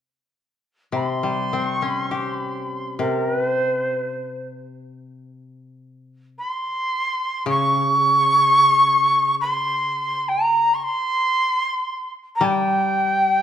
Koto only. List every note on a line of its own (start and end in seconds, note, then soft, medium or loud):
0.92 2.98 C3 soft
1.23 3.60 G3 soft
1.53 3.92 C4 soft
1.82 4.23 C#4 soft
2.11 4.53 G4 soft
2.99 6.37 C3 soft
7.46 10.84 C#3 soft
12.41 13.42 G3 medium